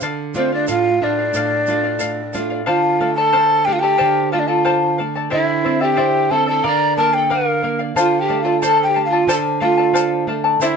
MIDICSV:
0, 0, Header, 1, 6, 480
1, 0, Start_track
1, 0, Tempo, 660793
1, 20, Time_signature, 2, 2, 24, 8
1, 7820, End_track
2, 0, Start_track
2, 0, Title_t, "Quena"
2, 0, Program_c, 0, 77
2, 266, Note_on_c, 0, 72, 77
2, 375, Note_off_c, 0, 72, 0
2, 393, Note_on_c, 0, 74, 87
2, 499, Note_off_c, 0, 74, 0
2, 510, Note_on_c, 0, 77, 98
2, 752, Note_on_c, 0, 74, 94
2, 763, Note_off_c, 0, 77, 0
2, 1707, Note_off_c, 0, 74, 0
2, 1943, Note_on_c, 0, 77, 86
2, 2277, Note_off_c, 0, 77, 0
2, 2287, Note_on_c, 0, 81, 108
2, 2651, Note_on_c, 0, 79, 91
2, 2662, Note_off_c, 0, 81, 0
2, 2707, Note_on_c, 0, 77, 82
2, 2718, Note_off_c, 0, 79, 0
2, 2756, Note_on_c, 0, 79, 101
2, 2767, Note_off_c, 0, 77, 0
2, 3133, Note_off_c, 0, 79, 0
2, 3138, Note_on_c, 0, 77, 71
2, 3192, Note_on_c, 0, 74, 64
2, 3202, Note_off_c, 0, 77, 0
2, 3251, Note_on_c, 0, 77, 78
2, 3262, Note_off_c, 0, 74, 0
2, 3625, Note_off_c, 0, 77, 0
2, 3866, Note_on_c, 0, 76, 86
2, 4222, Note_on_c, 0, 79, 92
2, 4233, Note_off_c, 0, 76, 0
2, 4583, Note_on_c, 0, 81, 106
2, 4594, Note_off_c, 0, 79, 0
2, 4702, Note_off_c, 0, 81, 0
2, 4711, Note_on_c, 0, 81, 89
2, 4821, Note_on_c, 0, 82, 103
2, 4832, Note_off_c, 0, 81, 0
2, 5060, Note_off_c, 0, 82, 0
2, 5065, Note_on_c, 0, 81, 98
2, 5185, Note_on_c, 0, 79, 88
2, 5196, Note_off_c, 0, 81, 0
2, 5314, Note_on_c, 0, 77, 87
2, 5325, Note_off_c, 0, 79, 0
2, 5667, Note_off_c, 0, 77, 0
2, 5781, Note_on_c, 0, 77, 83
2, 5954, Note_on_c, 0, 79, 74
2, 5965, Note_off_c, 0, 77, 0
2, 6100, Note_off_c, 0, 79, 0
2, 6105, Note_on_c, 0, 77, 77
2, 6248, Note_off_c, 0, 77, 0
2, 6252, Note_on_c, 0, 81, 92
2, 6405, Note_off_c, 0, 81, 0
2, 6416, Note_on_c, 0, 79, 88
2, 6567, Note_off_c, 0, 79, 0
2, 6576, Note_on_c, 0, 77, 78
2, 6727, Note_off_c, 0, 77, 0
2, 6738, Note_on_c, 0, 81, 100
2, 6792, Note_off_c, 0, 81, 0
2, 6984, Note_on_c, 0, 77, 82
2, 7433, Note_off_c, 0, 77, 0
2, 7713, Note_on_c, 0, 76, 87
2, 7820, Note_off_c, 0, 76, 0
2, 7820, End_track
3, 0, Start_track
3, 0, Title_t, "Charango"
3, 0, Program_c, 1, 24
3, 18, Note_on_c, 1, 69, 77
3, 20, Note_on_c, 1, 74, 92
3, 21, Note_on_c, 1, 77, 85
3, 250, Note_off_c, 1, 69, 0
3, 255, Note_off_c, 1, 74, 0
3, 259, Note_on_c, 1, 69, 55
3, 261, Note_off_c, 1, 77, 0
3, 264, Note_on_c, 1, 74, 57
3, 271, Note_on_c, 1, 77, 61
3, 371, Note_off_c, 1, 77, 0
3, 379, Note_off_c, 1, 69, 0
3, 380, Note_on_c, 1, 77, 58
3, 382, Note_off_c, 1, 74, 0
3, 393, Note_on_c, 1, 74, 46
3, 488, Note_off_c, 1, 74, 0
3, 490, Note_off_c, 1, 77, 0
3, 490, Note_on_c, 1, 69, 64
3, 496, Note_on_c, 1, 74, 72
3, 498, Note_on_c, 1, 77, 72
3, 730, Note_off_c, 1, 69, 0
3, 738, Note_off_c, 1, 74, 0
3, 739, Note_off_c, 1, 77, 0
3, 739, Note_on_c, 1, 69, 53
3, 746, Note_on_c, 1, 74, 56
3, 750, Note_on_c, 1, 77, 48
3, 853, Note_off_c, 1, 77, 0
3, 859, Note_off_c, 1, 69, 0
3, 861, Note_off_c, 1, 74, 0
3, 862, Note_on_c, 1, 77, 54
3, 870, Note_on_c, 1, 74, 41
3, 974, Note_off_c, 1, 74, 0
3, 977, Note_on_c, 1, 69, 74
3, 981, Note_off_c, 1, 77, 0
3, 983, Note_on_c, 1, 74, 74
3, 990, Note_on_c, 1, 77, 73
3, 1213, Note_off_c, 1, 69, 0
3, 1220, Note_off_c, 1, 77, 0
3, 1221, Note_on_c, 1, 69, 60
3, 1222, Note_off_c, 1, 74, 0
3, 1229, Note_on_c, 1, 77, 57
3, 1230, Note_on_c, 1, 74, 54
3, 1325, Note_off_c, 1, 77, 0
3, 1334, Note_off_c, 1, 74, 0
3, 1334, Note_on_c, 1, 77, 58
3, 1341, Note_off_c, 1, 69, 0
3, 1343, Note_on_c, 1, 74, 48
3, 1443, Note_off_c, 1, 74, 0
3, 1445, Note_on_c, 1, 69, 72
3, 1447, Note_off_c, 1, 77, 0
3, 1452, Note_on_c, 1, 74, 79
3, 1455, Note_on_c, 1, 77, 89
3, 1683, Note_off_c, 1, 69, 0
3, 1692, Note_on_c, 1, 69, 54
3, 1694, Note_off_c, 1, 74, 0
3, 1694, Note_off_c, 1, 77, 0
3, 1702, Note_on_c, 1, 77, 60
3, 1703, Note_on_c, 1, 74, 59
3, 1808, Note_off_c, 1, 77, 0
3, 1816, Note_off_c, 1, 69, 0
3, 1816, Note_on_c, 1, 77, 55
3, 1818, Note_off_c, 1, 74, 0
3, 1826, Note_on_c, 1, 74, 53
3, 1924, Note_off_c, 1, 77, 0
3, 1929, Note_off_c, 1, 74, 0
3, 1932, Note_on_c, 1, 77, 71
3, 1934, Note_on_c, 1, 69, 87
3, 1935, Note_on_c, 1, 72, 63
3, 1937, Note_on_c, 1, 74, 76
3, 1940, Note_on_c, 1, 81, 86
3, 2174, Note_off_c, 1, 69, 0
3, 2174, Note_off_c, 1, 77, 0
3, 2178, Note_off_c, 1, 72, 0
3, 2179, Note_off_c, 1, 74, 0
3, 2180, Note_off_c, 1, 81, 0
3, 2183, Note_on_c, 1, 69, 62
3, 2183, Note_on_c, 1, 77, 54
3, 2188, Note_on_c, 1, 81, 63
3, 2190, Note_on_c, 1, 74, 61
3, 2298, Note_off_c, 1, 74, 0
3, 2299, Note_off_c, 1, 81, 0
3, 2302, Note_off_c, 1, 69, 0
3, 2302, Note_off_c, 1, 77, 0
3, 2307, Note_on_c, 1, 74, 54
3, 2307, Note_on_c, 1, 81, 55
3, 2313, Note_on_c, 1, 69, 46
3, 2410, Note_off_c, 1, 81, 0
3, 2411, Note_off_c, 1, 69, 0
3, 2415, Note_off_c, 1, 74, 0
3, 2416, Note_on_c, 1, 72, 79
3, 2419, Note_on_c, 1, 77, 71
3, 2419, Note_on_c, 1, 81, 80
3, 2420, Note_on_c, 1, 69, 79
3, 2424, Note_on_c, 1, 74, 80
3, 2652, Note_off_c, 1, 77, 0
3, 2656, Note_off_c, 1, 69, 0
3, 2658, Note_off_c, 1, 72, 0
3, 2660, Note_off_c, 1, 74, 0
3, 2660, Note_off_c, 1, 81, 0
3, 2661, Note_on_c, 1, 77, 55
3, 2664, Note_on_c, 1, 69, 53
3, 2668, Note_on_c, 1, 74, 63
3, 2668, Note_on_c, 1, 81, 58
3, 2771, Note_off_c, 1, 81, 0
3, 2775, Note_off_c, 1, 74, 0
3, 2779, Note_off_c, 1, 69, 0
3, 2779, Note_on_c, 1, 81, 63
3, 2781, Note_off_c, 1, 77, 0
3, 2784, Note_on_c, 1, 74, 54
3, 2787, Note_on_c, 1, 69, 47
3, 2884, Note_off_c, 1, 69, 0
3, 2885, Note_off_c, 1, 81, 0
3, 2887, Note_off_c, 1, 74, 0
3, 2888, Note_on_c, 1, 77, 81
3, 2892, Note_on_c, 1, 72, 76
3, 2893, Note_on_c, 1, 69, 78
3, 2894, Note_on_c, 1, 81, 83
3, 2896, Note_on_c, 1, 74, 76
3, 3130, Note_off_c, 1, 77, 0
3, 3131, Note_off_c, 1, 69, 0
3, 3136, Note_off_c, 1, 72, 0
3, 3137, Note_off_c, 1, 81, 0
3, 3138, Note_off_c, 1, 74, 0
3, 3139, Note_on_c, 1, 77, 60
3, 3140, Note_on_c, 1, 69, 57
3, 3145, Note_on_c, 1, 81, 62
3, 3146, Note_on_c, 1, 74, 67
3, 3243, Note_off_c, 1, 81, 0
3, 3250, Note_off_c, 1, 74, 0
3, 3252, Note_on_c, 1, 81, 58
3, 3258, Note_off_c, 1, 69, 0
3, 3258, Note_on_c, 1, 74, 53
3, 3260, Note_off_c, 1, 77, 0
3, 3267, Note_on_c, 1, 69, 50
3, 3371, Note_off_c, 1, 69, 0
3, 3373, Note_off_c, 1, 74, 0
3, 3374, Note_off_c, 1, 81, 0
3, 3375, Note_on_c, 1, 72, 70
3, 3375, Note_on_c, 1, 77, 81
3, 3380, Note_on_c, 1, 69, 74
3, 3381, Note_on_c, 1, 74, 83
3, 3383, Note_on_c, 1, 81, 85
3, 3609, Note_off_c, 1, 77, 0
3, 3615, Note_off_c, 1, 74, 0
3, 3617, Note_off_c, 1, 69, 0
3, 3618, Note_off_c, 1, 72, 0
3, 3618, Note_on_c, 1, 77, 56
3, 3622, Note_off_c, 1, 81, 0
3, 3624, Note_on_c, 1, 74, 65
3, 3626, Note_on_c, 1, 69, 49
3, 3629, Note_on_c, 1, 81, 61
3, 3736, Note_off_c, 1, 81, 0
3, 3739, Note_off_c, 1, 77, 0
3, 3742, Note_off_c, 1, 74, 0
3, 3743, Note_off_c, 1, 69, 0
3, 3745, Note_on_c, 1, 81, 55
3, 3751, Note_on_c, 1, 74, 49
3, 3755, Note_on_c, 1, 69, 48
3, 3849, Note_off_c, 1, 74, 0
3, 3851, Note_on_c, 1, 67, 74
3, 3853, Note_on_c, 1, 72, 76
3, 3855, Note_off_c, 1, 69, 0
3, 3858, Note_on_c, 1, 64, 85
3, 3858, Note_on_c, 1, 74, 78
3, 3859, Note_off_c, 1, 81, 0
3, 3862, Note_on_c, 1, 76, 76
3, 4088, Note_off_c, 1, 72, 0
3, 4093, Note_off_c, 1, 64, 0
3, 4096, Note_off_c, 1, 67, 0
3, 4097, Note_on_c, 1, 72, 58
3, 4099, Note_off_c, 1, 74, 0
3, 4101, Note_off_c, 1, 76, 0
3, 4101, Note_on_c, 1, 64, 59
3, 4107, Note_on_c, 1, 74, 64
3, 4109, Note_on_c, 1, 76, 65
3, 4208, Note_off_c, 1, 76, 0
3, 4215, Note_off_c, 1, 74, 0
3, 4217, Note_off_c, 1, 64, 0
3, 4217, Note_on_c, 1, 76, 56
3, 4218, Note_off_c, 1, 72, 0
3, 4224, Note_on_c, 1, 74, 55
3, 4226, Note_on_c, 1, 64, 47
3, 4325, Note_on_c, 1, 67, 63
3, 4328, Note_off_c, 1, 74, 0
3, 4329, Note_off_c, 1, 64, 0
3, 4332, Note_off_c, 1, 76, 0
3, 4332, Note_on_c, 1, 72, 72
3, 4336, Note_on_c, 1, 74, 78
3, 4338, Note_on_c, 1, 64, 75
3, 4341, Note_on_c, 1, 76, 80
3, 4567, Note_off_c, 1, 72, 0
3, 4572, Note_off_c, 1, 67, 0
3, 4575, Note_on_c, 1, 72, 52
3, 4576, Note_off_c, 1, 74, 0
3, 4577, Note_off_c, 1, 76, 0
3, 4579, Note_off_c, 1, 64, 0
3, 4584, Note_on_c, 1, 74, 61
3, 4585, Note_on_c, 1, 76, 57
3, 4586, Note_on_c, 1, 64, 56
3, 4685, Note_off_c, 1, 76, 0
3, 4693, Note_on_c, 1, 76, 54
3, 4695, Note_off_c, 1, 74, 0
3, 4698, Note_off_c, 1, 72, 0
3, 4700, Note_off_c, 1, 64, 0
3, 4704, Note_on_c, 1, 74, 51
3, 4709, Note_on_c, 1, 64, 52
3, 4813, Note_off_c, 1, 74, 0
3, 4817, Note_off_c, 1, 76, 0
3, 4822, Note_on_c, 1, 70, 75
3, 4822, Note_on_c, 1, 74, 87
3, 4822, Note_on_c, 1, 77, 83
3, 4824, Note_off_c, 1, 64, 0
3, 5054, Note_off_c, 1, 70, 0
3, 5061, Note_off_c, 1, 74, 0
3, 5061, Note_off_c, 1, 77, 0
3, 5063, Note_on_c, 1, 70, 62
3, 5069, Note_on_c, 1, 74, 56
3, 5075, Note_on_c, 1, 77, 57
3, 5166, Note_off_c, 1, 77, 0
3, 5172, Note_off_c, 1, 74, 0
3, 5175, Note_on_c, 1, 77, 58
3, 5181, Note_off_c, 1, 70, 0
3, 5192, Note_on_c, 1, 74, 43
3, 5296, Note_off_c, 1, 74, 0
3, 5297, Note_off_c, 1, 77, 0
3, 5301, Note_on_c, 1, 70, 69
3, 5304, Note_on_c, 1, 74, 82
3, 5310, Note_on_c, 1, 77, 73
3, 5528, Note_off_c, 1, 70, 0
3, 5536, Note_off_c, 1, 74, 0
3, 5537, Note_on_c, 1, 70, 45
3, 5540, Note_off_c, 1, 77, 0
3, 5545, Note_on_c, 1, 74, 51
3, 5549, Note_on_c, 1, 77, 64
3, 5650, Note_off_c, 1, 77, 0
3, 5656, Note_off_c, 1, 74, 0
3, 5659, Note_off_c, 1, 70, 0
3, 5659, Note_on_c, 1, 77, 62
3, 5669, Note_on_c, 1, 74, 46
3, 5775, Note_off_c, 1, 77, 0
3, 5776, Note_off_c, 1, 74, 0
3, 5782, Note_on_c, 1, 69, 74
3, 5784, Note_on_c, 1, 72, 72
3, 5784, Note_on_c, 1, 77, 76
3, 5785, Note_on_c, 1, 74, 71
3, 5786, Note_on_c, 1, 81, 74
3, 6007, Note_off_c, 1, 77, 0
3, 6010, Note_off_c, 1, 69, 0
3, 6015, Note_on_c, 1, 77, 53
3, 6018, Note_off_c, 1, 74, 0
3, 6019, Note_on_c, 1, 69, 54
3, 6020, Note_off_c, 1, 81, 0
3, 6022, Note_off_c, 1, 72, 0
3, 6027, Note_on_c, 1, 74, 64
3, 6029, Note_on_c, 1, 81, 60
3, 6129, Note_off_c, 1, 81, 0
3, 6133, Note_off_c, 1, 74, 0
3, 6137, Note_off_c, 1, 69, 0
3, 6138, Note_off_c, 1, 77, 0
3, 6138, Note_on_c, 1, 81, 61
3, 6142, Note_on_c, 1, 74, 56
3, 6146, Note_on_c, 1, 69, 49
3, 6253, Note_off_c, 1, 69, 0
3, 6256, Note_off_c, 1, 81, 0
3, 6261, Note_off_c, 1, 74, 0
3, 6262, Note_on_c, 1, 69, 80
3, 6264, Note_on_c, 1, 72, 70
3, 6265, Note_on_c, 1, 77, 73
3, 6265, Note_on_c, 1, 81, 77
3, 6268, Note_on_c, 1, 74, 81
3, 6486, Note_off_c, 1, 77, 0
3, 6494, Note_off_c, 1, 69, 0
3, 6495, Note_on_c, 1, 77, 49
3, 6496, Note_off_c, 1, 74, 0
3, 6500, Note_off_c, 1, 81, 0
3, 6502, Note_off_c, 1, 72, 0
3, 6503, Note_on_c, 1, 69, 55
3, 6505, Note_on_c, 1, 74, 53
3, 6508, Note_on_c, 1, 81, 66
3, 6618, Note_off_c, 1, 77, 0
3, 6619, Note_off_c, 1, 81, 0
3, 6621, Note_off_c, 1, 69, 0
3, 6623, Note_off_c, 1, 74, 0
3, 6628, Note_on_c, 1, 81, 57
3, 6632, Note_on_c, 1, 74, 56
3, 6639, Note_on_c, 1, 69, 50
3, 6737, Note_off_c, 1, 69, 0
3, 6739, Note_off_c, 1, 74, 0
3, 6740, Note_off_c, 1, 81, 0
3, 6743, Note_on_c, 1, 72, 72
3, 6745, Note_on_c, 1, 77, 73
3, 6746, Note_on_c, 1, 69, 79
3, 6748, Note_on_c, 1, 74, 91
3, 6749, Note_on_c, 1, 81, 93
3, 6966, Note_off_c, 1, 77, 0
3, 6970, Note_off_c, 1, 69, 0
3, 6975, Note_on_c, 1, 77, 57
3, 6979, Note_off_c, 1, 74, 0
3, 6979, Note_off_c, 1, 81, 0
3, 6979, Note_on_c, 1, 69, 64
3, 6982, Note_off_c, 1, 72, 0
3, 6988, Note_on_c, 1, 74, 66
3, 6988, Note_on_c, 1, 81, 61
3, 7092, Note_off_c, 1, 81, 0
3, 7098, Note_off_c, 1, 77, 0
3, 7100, Note_off_c, 1, 69, 0
3, 7100, Note_on_c, 1, 81, 58
3, 7102, Note_off_c, 1, 74, 0
3, 7111, Note_on_c, 1, 74, 48
3, 7113, Note_on_c, 1, 69, 44
3, 7218, Note_off_c, 1, 69, 0
3, 7218, Note_off_c, 1, 74, 0
3, 7219, Note_on_c, 1, 77, 68
3, 7220, Note_on_c, 1, 72, 72
3, 7221, Note_off_c, 1, 81, 0
3, 7227, Note_on_c, 1, 69, 71
3, 7227, Note_on_c, 1, 74, 84
3, 7228, Note_on_c, 1, 81, 85
3, 7456, Note_off_c, 1, 77, 0
3, 7457, Note_off_c, 1, 74, 0
3, 7461, Note_off_c, 1, 69, 0
3, 7461, Note_off_c, 1, 72, 0
3, 7464, Note_off_c, 1, 81, 0
3, 7465, Note_on_c, 1, 77, 51
3, 7466, Note_on_c, 1, 74, 56
3, 7469, Note_on_c, 1, 69, 60
3, 7473, Note_on_c, 1, 81, 59
3, 7575, Note_off_c, 1, 74, 0
3, 7575, Note_off_c, 1, 81, 0
3, 7581, Note_off_c, 1, 69, 0
3, 7583, Note_off_c, 1, 77, 0
3, 7583, Note_on_c, 1, 74, 58
3, 7583, Note_on_c, 1, 81, 60
3, 7590, Note_on_c, 1, 69, 51
3, 7702, Note_off_c, 1, 74, 0
3, 7702, Note_off_c, 1, 81, 0
3, 7705, Note_off_c, 1, 69, 0
3, 7710, Note_on_c, 1, 67, 80
3, 7710, Note_on_c, 1, 72, 71
3, 7715, Note_on_c, 1, 76, 81
3, 7717, Note_on_c, 1, 64, 91
3, 7717, Note_on_c, 1, 74, 83
3, 7820, Note_off_c, 1, 64, 0
3, 7820, Note_off_c, 1, 67, 0
3, 7820, Note_off_c, 1, 72, 0
3, 7820, Note_off_c, 1, 74, 0
3, 7820, Note_off_c, 1, 76, 0
3, 7820, End_track
4, 0, Start_track
4, 0, Title_t, "Pan flute"
4, 0, Program_c, 2, 75
4, 261, Note_on_c, 2, 60, 71
4, 372, Note_off_c, 2, 60, 0
4, 390, Note_on_c, 2, 62, 67
4, 497, Note_off_c, 2, 62, 0
4, 500, Note_on_c, 2, 65, 76
4, 739, Note_on_c, 2, 62, 76
4, 750, Note_off_c, 2, 65, 0
4, 1700, Note_off_c, 2, 62, 0
4, 1935, Note_on_c, 2, 65, 73
4, 2273, Note_off_c, 2, 65, 0
4, 2298, Note_on_c, 2, 69, 89
4, 2668, Note_on_c, 2, 67, 76
4, 2679, Note_off_c, 2, 69, 0
4, 2713, Note_on_c, 2, 65, 60
4, 2724, Note_off_c, 2, 67, 0
4, 2755, Note_on_c, 2, 67, 82
4, 2766, Note_off_c, 2, 65, 0
4, 3137, Note_off_c, 2, 67, 0
4, 3144, Note_on_c, 2, 65, 62
4, 3193, Note_on_c, 2, 62, 53
4, 3203, Note_off_c, 2, 65, 0
4, 3249, Note_on_c, 2, 65, 72
4, 3260, Note_off_c, 2, 62, 0
4, 3624, Note_off_c, 2, 65, 0
4, 3880, Note_on_c, 2, 64, 85
4, 4227, Note_on_c, 2, 67, 82
4, 4238, Note_off_c, 2, 64, 0
4, 4588, Note_on_c, 2, 69, 81
4, 4599, Note_off_c, 2, 67, 0
4, 4704, Note_off_c, 2, 69, 0
4, 4719, Note_on_c, 2, 69, 83
4, 4841, Note_on_c, 2, 74, 96
4, 4852, Note_off_c, 2, 69, 0
4, 5070, Note_off_c, 2, 74, 0
4, 5073, Note_on_c, 2, 70, 82
4, 5201, Note_on_c, 2, 69, 71
4, 5212, Note_off_c, 2, 70, 0
4, 5317, Note_on_c, 2, 70, 79
4, 5327, Note_off_c, 2, 69, 0
4, 5668, Note_off_c, 2, 70, 0
4, 5795, Note_on_c, 2, 65, 77
4, 5957, Note_on_c, 2, 67, 75
4, 5968, Note_off_c, 2, 65, 0
4, 6109, Note_off_c, 2, 67, 0
4, 6126, Note_on_c, 2, 65, 72
4, 6263, Note_off_c, 2, 65, 0
4, 6281, Note_on_c, 2, 69, 75
4, 6420, Note_off_c, 2, 69, 0
4, 6444, Note_on_c, 2, 67, 67
4, 6582, Note_off_c, 2, 67, 0
4, 6605, Note_on_c, 2, 65, 60
4, 6742, Note_off_c, 2, 65, 0
4, 6758, Note_on_c, 2, 69, 74
4, 6810, Note_off_c, 2, 69, 0
4, 6990, Note_on_c, 2, 65, 68
4, 7437, Note_off_c, 2, 65, 0
4, 7711, Note_on_c, 2, 64, 74
4, 7820, Note_off_c, 2, 64, 0
4, 7820, End_track
5, 0, Start_track
5, 0, Title_t, "Nylon-string guitar"
5, 0, Program_c, 3, 24
5, 13, Note_on_c, 3, 50, 67
5, 251, Note_on_c, 3, 57, 54
5, 254, Note_on_c, 3, 62, 51
5, 259, Note_on_c, 3, 65, 55
5, 482, Note_off_c, 3, 50, 0
5, 499, Note_on_c, 3, 45, 60
5, 639, Note_off_c, 3, 57, 0
5, 641, Note_off_c, 3, 62, 0
5, 643, Note_off_c, 3, 65, 0
5, 734, Note_on_c, 3, 57, 50
5, 739, Note_on_c, 3, 62, 46
5, 740, Note_on_c, 3, 65, 49
5, 965, Note_off_c, 3, 45, 0
5, 975, Note_on_c, 3, 45, 64
5, 1122, Note_off_c, 3, 57, 0
5, 1123, Note_off_c, 3, 65, 0
5, 1124, Note_off_c, 3, 62, 0
5, 1217, Note_on_c, 3, 57, 53
5, 1221, Note_on_c, 3, 62, 46
5, 1225, Note_on_c, 3, 65, 54
5, 1443, Note_off_c, 3, 45, 0
5, 1463, Note_on_c, 3, 45, 56
5, 1603, Note_off_c, 3, 57, 0
5, 1605, Note_off_c, 3, 62, 0
5, 1607, Note_off_c, 3, 65, 0
5, 1705, Note_on_c, 3, 57, 47
5, 1706, Note_on_c, 3, 62, 42
5, 1708, Note_on_c, 3, 65, 52
5, 1895, Note_off_c, 3, 62, 0
5, 1896, Note_off_c, 3, 57, 0
5, 1897, Note_off_c, 3, 65, 0
5, 1928, Note_off_c, 3, 45, 0
5, 1943, Note_on_c, 3, 50, 64
5, 2184, Note_on_c, 3, 57, 61
5, 2415, Note_off_c, 3, 57, 0
5, 2428, Note_on_c, 3, 72, 46
5, 2657, Note_off_c, 3, 72, 0
5, 2672, Note_on_c, 3, 57, 56
5, 2873, Note_off_c, 3, 50, 0
5, 2899, Note_off_c, 3, 57, 0
5, 2913, Note_on_c, 3, 50, 66
5, 3153, Note_on_c, 3, 57, 62
5, 3380, Note_off_c, 3, 57, 0
5, 3394, Note_on_c, 3, 72, 52
5, 3620, Note_off_c, 3, 72, 0
5, 3635, Note_on_c, 3, 57, 52
5, 3838, Note_off_c, 3, 50, 0
5, 3861, Note_off_c, 3, 57, 0
5, 3870, Note_on_c, 3, 50, 75
5, 4111, Note_on_c, 3, 60, 63
5, 4339, Note_off_c, 3, 60, 0
5, 4349, Note_on_c, 3, 72, 55
5, 4577, Note_off_c, 3, 72, 0
5, 4583, Note_on_c, 3, 60, 47
5, 4796, Note_off_c, 3, 50, 0
5, 4814, Note_off_c, 3, 60, 0
5, 4827, Note_on_c, 3, 50, 71
5, 5067, Note_on_c, 3, 58, 55
5, 5297, Note_off_c, 3, 58, 0
5, 5313, Note_on_c, 3, 70, 47
5, 5539, Note_off_c, 3, 70, 0
5, 5546, Note_on_c, 3, 58, 53
5, 5755, Note_off_c, 3, 50, 0
5, 5776, Note_off_c, 3, 58, 0
5, 5781, Note_on_c, 3, 50, 62
5, 6028, Note_on_c, 3, 57, 59
5, 6257, Note_off_c, 3, 57, 0
5, 6267, Note_on_c, 3, 69, 50
5, 6497, Note_off_c, 3, 69, 0
5, 6514, Note_on_c, 3, 57, 47
5, 6712, Note_off_c, 3, 50, 0
5, 6737, Note_on_c, 3, 50, 70
5, 6740, Note_off_c, 3, 57, 0
5, 6986, Note_on_c, 3, 57, 59
5, 7216, Note_off_c, 3, 57, 0
5, 7217, Note_on_c, 3, 69, 53
5, 7452, Note_off_c, 3, 69, 0
5, 7462, Note_on_c, 3, 57, 52
5, 7670, Note_off_c, 3, 50, 0
5, 7694, Note_off_c, 3, 57, 0
5, 7698, Note_on_c, 3, 50, 63
5, 7820, Note_off_c, 3, 50, 0
5, 7820, End_track
6, 0, Start_track
6, 0, Title_t, "Drums"
6, 5, Note_on_c, 9, 82, 81
6, 78, Note_off_c, 9, 82, 0
6, 249, Note_on_c, 9, 82, 61
6, 322, Note_off_c, 9, 82, 0
6, 490, Note_on_c, 9, 82, 95
6, 563, Note_off_c, 9, 82, 0
6, 971, Note_on_c, 9, 82, 87
6, 1044, Note_off_c, 9, 82, 0
6, 1210, Note_on_c, 9, 82, 61
6, 1283, Note_off_c, 9, 82, 0
6, 1450, Note_on_c, 9, 82, 98
6, 1522, Note_off_c, 9, 82, 0
6, 1695, Note_on_c, 9, 82, 68
6, 1768, Note_off_c, 9, 82, 0
6, 5790, Note_on_c, 9, 82, 101
6, 5863, Note_off_c, 9, 82, 0
6, 6268, Note_on_c, 9, 82, 93
6, 6341, Note_off_c, 9, 82, 0
6, 6751, Note_on_c, 9, 82, 104
6, 6824, Note_off_c, 9, 82, 0
6, 7233, Note_on_c, 9, 82, 105
6, 7306, Note_off_c, 9, 82, 0
6, 7707, Note_on_c, 9, 82, 99
6, 7780, Note_off_c, 9, 82, 0
6, 7820, End_track
0, 0, End_of_file